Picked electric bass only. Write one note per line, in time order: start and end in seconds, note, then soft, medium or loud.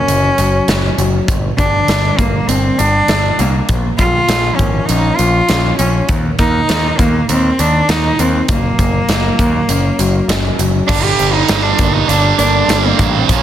0.08 0.29 F#1 medium
0.38 0.59 F#1 medium
0.68 0.89 F#1 medium
0.98 1.19 F#1 medium
1.28 1.49 G1 medium
1.59 1.79 G1 medium
1.88 2.09 G1 medium
2.18 2.39 G1 medium
2.48 2.69 G1 medium
2.79 3.00 G1 medium
3.08 3.29 G1 medium
3.39 3.60 C2 medium
3.69 3.90 A#1 medium
3.99 4.20 A#1 medium
4.29 4.50 A#1 medium
4.59 4.80 G#1 medium
4.89 5.10 A#1 medium
5.19 5.40 A#1 medium
5.49 5.70 A#1 medium
5.79 6.00 A#1 medium
6.09 6.30 D#2 medium
6.39 6.60 D#2 medium
6.69 6.90 D#2 medium
6.99 7.20 D#2 medium
7.29 7.50 D#2 medium
7.59 7.80 D#2 medium
7.89 8.10 D#2 medium
8.19 8.40 D#2 medium
8.49 8.70 F#1 medium
8.79 9.00 F#1 medium
9.09 9.30 F#1 medium
9.39 9.60 D#2 medium
9.69 9.90 F#1 medium
9.99 10.20 F#1 medium
10.28 10.49 F#1 medium
10.59 10.80 F#1 medium
10.89 11.11 G1 medium
11.19 11.42 G1 medium
11.49 11.71 G1 medium
11.79 12.02 G1 medium
12.08 12.31 G1 medium
12.38 12.61 G1 medium
12.68 12.91 G1 medium
12.99 13.22 A1 loud
13.29 13.43 A#1 medium